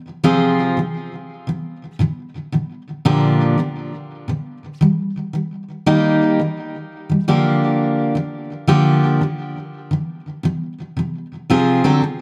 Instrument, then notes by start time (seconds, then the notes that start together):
steel-string acoustic guitar
0.24 C3 F3 C4 F4 G#4
0.77 C3 F3
1.47 C3 F3
1.99 A#2 D3 F3
2.52 A#2 D3 F3
3.05 A#2 D3 F3 A#3 D4 G4
3.58 A#2 D3 F3
4.28 A#2 D3 F3
4.81 D#3 G3
5.33 D#3 G3
5.86 D#3 G3 A#3 D#4 G4
6.39 D#3 G3
7.09 D#3 G3
7.28 D3 F3 A#3 D4 G4
8.15 D3 F3
8.67 D3 F3 A#3 D4 G4
9.21 D3 F3
9.91 D3 F3
10.43 C3 F3
10.97 C3 F3
11.50 C3 F3 C4 F4 G#4
11.84 D3 F#3 C4 D4 A4
12.02 D3